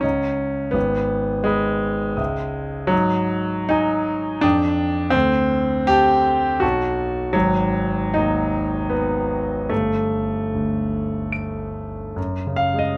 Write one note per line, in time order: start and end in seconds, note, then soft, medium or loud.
0.01 0.73 C#2 soft
0.01 0.74 C#4 medium
0.01 0.72 D#5 soft
0.01 0.71 A#5 soft
0.71 2.14 G#1 soft
0.71 1.45 B3 medium
1.44 2.90 G#3 medium
1.44 2.14 D#5 soft
1.44 2.14 B5 soft
2.17 2.89 C#2 soft
2.17 2.87 E5 soft
2.17 2.87 D#6 soft
2.87 4.39 G#2 soft
2.87 3.70 F#3 medium
3.69 4.42 D#4 medium
3.69 4.39 G#5 soft
3.69 4.39 D#6 soft
4.41 5.12 F2 soft
4.41 5.13 D4 medium
4.41 5.10 G5 soft
4.41 5.10 D#6 soft
5.10 6.59 D2 medium
5.10 5.89 C4 medium
5.87 6.61 G4 loud
5.87 6.58 A5 soft
5.87 6.58 D6 soft
6.60 7.32 B1 soft
6.60 7.33 F#4 medium
6.60 7.30 A5 soft
6.60 7.31 C#6 soft
7.33 9.67 G#1 soft
7.33 8.15 F#3 medium
8.14 9.71 D#2 soft
8.14 8.91 D#4 medium
8.90 9.70 B3 medium
9.69 12.13 G1 soft
9.69 11.32 A3 medium
10.55 12.17 D2 soft
11.32 12.13 D7 soft
12.16 12.97 F#2 soft
12.47 12.92 C#3 soft
12.56 12.80 F5 medium
12.74 12.97 G#3 soft
12.79 12.97 D#5 medium